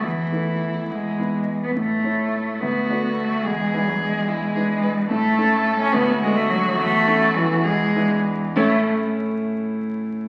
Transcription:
X:1
M:6/8
L:1/16
Q:3/8=70
K:A
V:1 name="Violin"
E8- E z3 | z6 F6 | G6 E2 G2 B2 | A6 F6- |
F6 G3 z3 | C2 z8 z2 |]
V:2 name="Grand piano"
E,,2 [A,EB]4 E,,2 [B,EB]4 | A,,2 [A,Ec]4 D,,2 [A,Fd]4 | E,,2 [DEB]6 [DEB]4 | A,,2 [CEA]4 D,,2 [DFA]4 |
E,,2 [CEA]4 E,,2 [DEB]4 | [A,,A,CEAe]2 z8 z2 |]
V:3 name="Cello" clef=bass
E,6 G,4- G, B, | A,6 B,4 A,2 | G,3 F, G,2 G,6 | A,4- A, C B,2 G, A, F,2 |
A,4 E,2 G,6 | A,2 z8 z2 |]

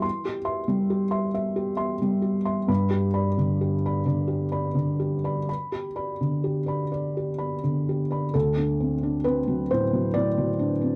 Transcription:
X:1
M:6/8
L:1/16
Q:3/8=44
K:G
V:1 name="Felt piano"
c' G [ec'] G, G [ec'] e G [ec'] G, G [ec'] | b G [db] D, G [db] d G [db] D, G [db] | b G [db] D, G [db] d G [db] D, G [db] | A4 B2 c2 d4 |]
V:2 name="Felt piano" clef=bass
E,12 | G,,6 D,6- | D,12 | D,, D C D C F, A,, F, A,, F, D C |]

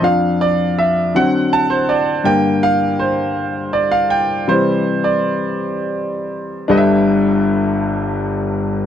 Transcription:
X:1
M:6/8
L:1/16
Q:3/8=54
K:Cmix
V:1 name="Grand piano"
f2 d2 e2 ^f2 a c d2 | g2 f2 c2 z2 d f g2 | c3 d2 z6 z | [K:G] [DGAB_e=e]12 |]
V:2 name="Grand piano" clef=bass
[F,,F,D]6 [D,^F,C]2 z4 | [G,,D,B,]12 | [C,E,G,]2 z8 z2 | [K:G] [G,,,G,,]12 |]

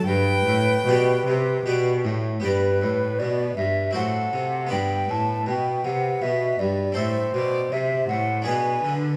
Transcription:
X:1
M:3/4
L:1/8
Q:1/4=79
K:G
V:1 name="Flute"
B4- B z | B2 d e f2 | g a g f e d | c2 e f ^g z |]
V:2 name="Violin"
g4 z2 | B4 A2 | B2 B4 | e d c2 B2 |]
V:3 name="Harpsichord"
z2 [B,Gd]2 [B,Gd]2 | [B,Gd]4 [CFc]2 | [B,Bd]6 | [CAc]4 [D^GB]2 |]
V:4 name="Harpsichord" clef=bass
G,, A,, B,, C, B,, A,, | G,, A,, B,, G,, A,, C, | G,, A,, B,, C, B,, G,, | A,, B,, C, A,, B,, D, |]
V:5 name="Cello" clef=bass
G,, A,, B,, C, B,, A,, | G,, A,, B,, G,, A,, C, | G,, A,, B,, C, B,, G,, | A,, B,, C, A,, B,, D, |]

